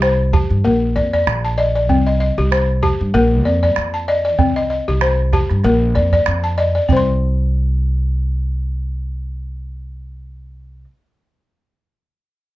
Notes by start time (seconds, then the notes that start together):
Already playing: C2 G4 D#5
0.02 C5, calabash click
0.33 G4 A5, calabash thump
0.50 G2
0.64 A#1 A#3 A#4
0.96 F2 D5
1.13 D5, calabash thump, calabash click
1.27 A#1, calabash click
1.45 A5
1.58 D5 D#5
1.75 D5
1.89 C2 C4, calabash thump
2.07 D#5, calabash click
2.20 D#5
2.38 C2 G4
2.52 C5, calabash click
2.83 G4 A5, calabash thump
3.01 G2
3.14 A#1 A#3 A#4
3.45 F2 D5
3.63 D5, calabash thump, calabash click
3.76 F2, calabash click
3.94 A5
4.08 D5 D#5
4.25 D5
4.39 C2 C4, calabash thump, calabash click
4.56 D#5, calabash click
4.70 D#5
4.88 C2 G4
5.01 C5, calabash click
5.33 G4 A5, calabash thump, calabash click
5.50 G2, calabash click
5.64 A#1 A#3 A#4, calabash click
5.95 F2 D5, calabash click
6.12 D5, calabash thump
6.26 F2, calabash click
6.44 A5
6.58 D5 D#5, calabash click
6.75 D5
6.89 C2 C4 C5, calabash thump
6.97 C6